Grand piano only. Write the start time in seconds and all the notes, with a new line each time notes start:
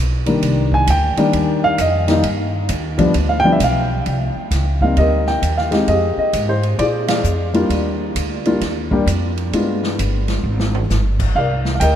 0.26 D#3 G3 A#3 D4
0.74 G#5
0.90 G5
1.18 D#3 G3 A#3 D4
1.64 F5
1.81 D#5
2.08 D#3 G3 A#3 D#4
2.98 F3 G3 B3 D4
3.29 F5
3.40 G5
3.44 F3 G3 B3 D4
3.52 E5
3.64 F5
4.81 G3 A#3 C4 D#4 F5
4.98 G4 A#4 D#5
5.28 G5
5.58 F5
5.71 G#3 C4 D#4 G4
5.88 G4 G#4 D#5
6.19 D#5
6.49 C5
6.79 F4 G#4 D5
7.08 G#4 D5 F5
7.54 G3 A#3 D4 F4
8.46 G3 A#3 D4 F4
8.91 G3 A#3 D4 G4
9.54 G#3 B3 D4 F4
11.36 A#4 D5 F5
11.75 F5
11.80 A#4 D#5 G5